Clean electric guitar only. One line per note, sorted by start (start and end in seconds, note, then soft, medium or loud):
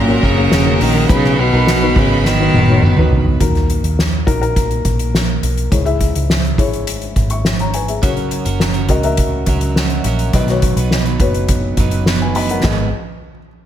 0.00 0.22 F#3 medium
0.00 0.22 C#4 medium
0.00 0.24 F#4 medium
0.00 0.24 A#4 medium
0.23 0.50 F#3 medium
0.23 0.52 C#4 medium
0.23 0.52 F#4 medium
0.23 0.53 A#4 medium
0.52 0.66 F#3 medium
0.52 0.67 C#4 medium
0.52 0.66 F#4 medium
0.52 0.65 A#4 medium
0.66 1.10 C#4 medium
0.66 1.10 F#4 medium
0.66 1.10 A#4 medium
1.09 1.53 B2 medium
1.09 1.53 D#3 medium
1.09 1.53 F#3 loud
1.09 1.53 B3 loud
1.09 1.52 D#4 loud
1.09 1.51 B4 loud
1.52 1.94 F#3 medium
1.52 1.95 B3 medium
1.52 1.97 D#4 medium
1.52 1.96 B4 medium
1.95 2.53 F#3 medium
1.95 2.54 B3 medium
1.95 2.55 D#4 medium
1.95 2.55 B4 medium
2.54 2.81 F#3 medium
2.54 2.82 B3 medium
2.54 2.83 D#4 medium
2.54 2.84 B4 medium
2.82 2.97 F#3 medium
2.82 2.98 B3 medium
2.82 2.97 D#4 medium
2.82 2.95 B4 medium
2.96 3.42 F#3 medium
2.96 3.41 B3 medium
2.96 3.41 D#4 medium
2.96 3.40 B4 medium
8.02 8.45 F#3 medium
8.02 8.46 C#4 medium
8.02 8.46 F#4 loud
8.02 8.44 A#4 loud
8.45 8.76 C#4 soft
8.45 8.74 F#4 medium
8.45 8.73 A#4 medium
8.74 9.46 C#4 soft
8.74 9.48 F#4 soft
8.74 9.46 A#4 medium
9.46 9.75 F#3 medium
9.46 9.76 C#4 medium
9.46 9.76 F#4 medium
9.46 9.77 A#4 medium
9.76 10.04 F#3 medium
9.76 10.05 C#4 medium
9.76 10.05 F#4 medium
9.76 10.06 A#4 medium
10.05 10.33 F#3 medium
10.05 10.34 C#4 medium
10.05 10.34 F#4 medium
10.05 10.35 A#4 medium
10.33 10.76 B2 medium
10.33 10.77 D#3 medium
10.33 10.77 F#3 loud
10.33 10.77 B3 medium
10.33 10.76 D#4 loud
10.33 10.76 B4 loud
10.77 11.07 F#3 soft
10.77 11.06 B3 medium
10.77 11.05 D#4 medium
10.77 11.04 B4 medium
11.05 11.76 F#3 soft
11.05 11.78 B3 soft
11.05 11.79 D#4 soft
11.05 11.80 B4 medium
11.78 12.05 F#3 medium
11.78 12.06 B3 medium
11.78 12.07 D#4 medium
11.78 12.08 B4 medium
12.06 12.34 F#3 medium
12.06 12.35 B3 medium
12.06 12.36 D#4 medium
12.06 12.36 B4 medium
12.35 12.64 F#3 medium
12.35 12.64 B3 medium
12.35 12.65 D#4 medium
12.35 12.65 B4 medium
12.64 12.87 G#2 medium
12.64 12.87 D#3 medium
12.64 12.87 G#3 medium
12.64 12.88 B3 loud
12.64 12.88 D#4 medium
12.64 12.88 B4 medium